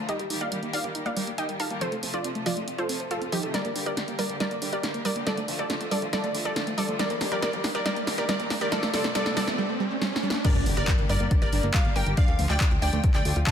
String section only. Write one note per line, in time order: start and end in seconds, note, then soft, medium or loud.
0.09 0.24 D#3 medium
0.09 0.24 G3 medium
0.09 0.24 A#3 medium
0.09 0.24 G4 medium
0.30 0.46 D#3 medium
0.30 0.46 G3 medium
0.30 0.46 A#3 medium
0.30 0.46 G4 medium
0.52 0.60 D#3 medium
0.52 0.60 G3 medium
0.52 0.60 A#3 medium
0.52 0.60 G4 medium
0.63 0.78 D#3 medium
0.63 0.78 G3 medium
0.63 0.78 A#3 medium
0.63 0.78 G4 medium
0.84 0.92 D#3 medium
0.84 0.92 G3 medium
0.84 0.92 A#3 medium
0.84 0.92 G4 medium
0.95 1.10 D#3 medium
0.95 1.10 G3 medium
0.95 1.10 A#3 medium
0.95 1.10 G4 medium
1.17 1.32 D#3 medium
1.17 1.32 G3 medium
1.17 1.32 A#3 medium
1.17 1.32 G4 medium
1.38 1.46 D#3 medium
1.38 1.46 G3 medium
1.38 1.46 A#3 medium
1.38 1.46 G4 medium
1.49 1.64 D#3 medium
1.49 1.64 G3 medium
1.49 1.64 A#3 medium
1.49 1.64 G4 medium
1.71 1.78 D#3 medium
1.71 1.78 G3 medium
1.71 1.78 A#3 medium
1.71 1.78 G4 medium
1.81 1.97 C3 medium
1.81 1.97 F3 medium
1.81 1.97 A3 medium
1.81 1.97 F4 medium
2.03 2.18 C3 medium
2.03 2.18 F3 medium
2.03 2.18 A3 medium
2.03 2.18 F4 medium
2.24 2.32 C3 medium
2.24 2.32 F3 medium
2.24 2.32 A3 medium
2.24 2.32 F4 medium
2.35 2.50 C3 medium
2.35 2.50 F3 medium
2.35 2.50 A3 medium
2.35 2.50 F4 medium
2.57 2.64 C3 medium
2.57 2.64 F3 medium
2.57 2.64 A3 medium
2.57 2.64 F4 medium
2.68 2.83 C3 medium
2.68 2.83 F3 medium
2.68 2.83 A3 medium
2.68 2.83 F4 medium
2.89 3.04 C3 medium
2.89 3.04 F3 medium
2.89 3.04 A3 medium
2.89 3.04 F4 medium
3.11 3.18 C3 medium
3.11 3.18 F3 medium
3.11 3.18 A3 medium
3.11 3.18 F4 medium
3.22 3.37 C3 medium
3.22 3.37 F3 medium
3.22 3.37 A3 medium
3.22 3.37 F4 medium
3.43 3.51 C3 medium
3.43 3.51 F3 medium
3.43 3.51 A3 medium
3.43 3.51 F4 medium
3.54 3.69 D3 medium
3.54 3.69 G3 medium
3.54 3.69 A#3 medium
3.54 3.69 G4 medium
3.75 3.91 D3 medium
3.75 3.91 G3 medium
3.75 3.91 A#3 medium
3.75 3.91 G4 medium
3.97 4.05 D3 medium
3.97 4.05 G3 medium
3.97 4.05 A#3 medium
3.97 4.05 G4 medium
4.08 4.23 D3 medium
4.08 4.23 G3 medium
4.08 4.23 A#3 medium
4.08 4.23 G4 medium
4.29 4.37 D3 medium
4.29 4.37 G3 medium
4.29 4.37 A#3 medium
4.29 4.37 G4 medium
4.40 4.55 D3 medium
4.40 4.55 G3 medium
4.40 4.55 A#3 medium
4.40 4.55 G4 medium
4.62 4.77 D3 medium
4.62 4.77 G3 medium
4.62 4.77 A#3 medium
4.62 4.77 G4 medium
4.83 4.91 D3 medium
4.83 4.91 G3 medium
4.83 4.91 A#3 medium
4.83 4.91 G4 medium
4.94 5.09 D3 medium
4.94 5.09 G3 medium
4.94 5.09 A#3 medium
4.94 5.09 G4 medium
5.16 5.23 D3 medium
5.16 5.23 G3 medium
5.16 5.23 A#3 medium
5.16 5.23 G4 medium
5.26 5.42 D3 medium
5.26 5.42 F3 medium
5.26 5.42 A3 medium
5.26 5.42 F4 medium
5.48 5.63 D3 medium
5.48 5.63 F3 medium
5.48 5.63 A3 medium
5.48 5.63 F4 medium
5.70 5.77 D3 medium
5.70 5.77 F3 medium
5.70 5.77 A3 medium
5.70 5.77 F4 medium
5.81 5.96 D3 medium
5.81 5.96 F3 medium
5.81 5.96 A3 loud
5.81 5.96 F4 medium
6.02 6.10 D3 medium
6.02 6.10 F3 medium
6.02 6.10 A3 medium
6.02 6.10 F4 medium
6.13 6.28 D3 medium
6.13 6.28 F3 medium
6.13 6.28 A3 medium
6.13 6.28 F4 medium
6.35 6.50 D3 medium
6.35 6.50 F3 medium
6.35 6.50 A3 medium
6.35 6.50 F4 medium
6.56 6.64 D3 medium
6.56 6.64 F3 medium
6.56 6.64 A3 medium
6.56 6.64 F4 medium
6.67 6.82 D3 medium
6.67 6.82 F3 medium
6.67 6.82 A3 medium
6.67 6.82 F4 medium
6.89 6.96 D3 medium
6.89 6.96 F3 medium
6.89 6.96 A3 medium
6.89 6.96 F4 medium
6.99 7.15 D#3 medium
6.99 7.15 G3 medium
6.99 7.15 A#3 medium
6.99 7.15 G4 medium
7.21 7.36 D#3 medium
7.21 7.36 G3 medium
7.21 7.36 A#3 medium
7.21 7.36 G4 medium
7.42 7.50 D#3 medium
7.42 7.50 G3 medium
7.42 7.50 A#3 medium
7.42 7.50 G4 medium
7.53 7.68 D#3 medium
7.53 7.68 G3 medium
7.53 7.68 A#3 medium
7.53 7.68 G4 medium
7.75 7.83 D#3 medium
7.75 7.83 G3 medium
7.75 7.83 A#3 medium
7.75 7.83 G4 medium
7.86 8.01 D#3 medium
7.86 8.01 G3 medium
7.86 8.01 A#3 medium
7.86 8.01 G4 medium
8.07 8.22 D#3 medium
8.07 8.22 G3 medium
8.07 8.22 A#3 medium
8.07 8.22 G4 medium
8.29 8.37 D#3 medium
8.29 8.37 G3 medium
8.29 8.37 A#3 medium
8.29 8.37 G4 medium
8.40 8.55 D#3 medium
8.40 8.55 G3 medium
8.40 8.55 A#3 medium
8.40 8.55 G4 medium
8.61 8.69 D#3 medium
8.61 8.69 G3 medium
8.61 8.69 A#3 medium
8.61 8.69 G4 medium
8.72 8.87 C3 medium
8.72 8.87 F3 medium
8.72 8.87 A3 medium
8.72 8.87 F4 medium
8.94 9.09 C3 medium
8.94 9.09 F3 medium
8.94 9.09 A3 medium
8.94 9.09 F4 medium
9.15 9.23 C3 medium
9.15 9.23 F3 medium
9.15 9.23 A3 medium
9.15 9.23 F4 medium
9.26 9.41 C3 loud
9.26 9.41 F3 loud
9.26 9.41 A3 medium
9.26 9.41 F4 loud
9.47 9.55 C3 medium
9.47 9.55 F3 medium
9.47 9.55 A3 medium
9.47 9.55 F4 medium
10.45 10.60 D3 medium
10.45 10.60 G3 medium
10.45 10.60 A#3 medium
10.45 10.60 G4 medium
10.66 10.81 D3 medium
10.66 10.81 G3 medium
10.66 10.81 A#3 medium
10.66 10.81 G4 medium
10.88 10.95 D3 medium
10.88 10.95 G3 medium
10.88 10.95 A#3 medium
10.88 10.95 G4 medium
10.98 11.14 D3 medium
10.98 11.14 G3 medium
10.98 11.14 A#3 medium
10.98 11.14 G4 medium
11.20 11.28 D3 medium
11.20 11.28 G3 medium
11.20 11.28 A#3 medium
11.20 11.28 G4 medium
11.31 11.46 D3 medium
11.31 11.46 G3 medium
11.31 11.46 A#3 medium
11.31 11.46 G4 medium
11.53 11.68 D3 medium
11.53 11.68 G3 medium
11.53 11.68 A#3 medium
11.53 11.68 G4 medium
11.74 11.82 D3 medium
11.74 11.82 G3 medium
11.74 11.82 A#3 medium
11.74 11.82 G4 medium
11.85 12.00 D3 medium
11.85 12.00 G3 medium
11.85 12.00 A#3 medium
11.85 12.00 G4 medium
12.07 12.14 D3 medium
12.07 12.14 G3 medium
12.07 12.14 A#3 medium
12.07 12.14 G4 medium
12.17 12.32 D3 medium
12.17 12.32 F3 medium
12.17 12.32 A3 medium
12.17 12.32 F4 medium
12.39 12.54 D3 medium
12.39 12.54 F3 medium
12.39 12.54 A3 medium
12.39 12.54 F4 medium
12.60 12.68 D3 medium
12.60 12.68 F3 medium
12.60 12.68 A3 medium
12.60 12.68 F4 medium
12.71 12.86 D3 medium
12.71 12.86 F3 loud
12.71 12.86 A3 medium
12.71 12.86 F4 medium
12.93 13.00 D3 medium
12.93 13.00 F3 medium
12.93 13.00 A3 medium
12.93 13.00 F4 medium
13.04 13.19 D3 medium
13.04 13.19 F3 medium
13.04 13.19 A3 medium
13.04 13.19 F4 medium
13.25 13.40 D3 medium
13.25 13.40 F3 medium
13.25 13.40 A3 medium
13.25 13.40 F4 medium
13.47 13.51 D3 medium
13.47 13.51 F3 medium
13.47 13.51 A3 medium
13.47 13.51 F4 medium